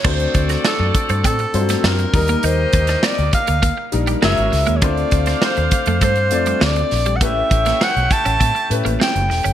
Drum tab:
CC |x---------------|----------------|----------------|----------------|
HH |-xxx--xxxxxx-xox|x-xx-xxxx-xx-xox|xxxx-xxxxxxx-xox|x-xx-xxxxxxx-xox|
SD |---oo------oo---|---oo-------o-o-|---oo-------o-o-|---oo-------o-o-|
BD |o-o---o-o-----o-|--o---o-o-------|o-o---o-o-------|o-o---o-o-------|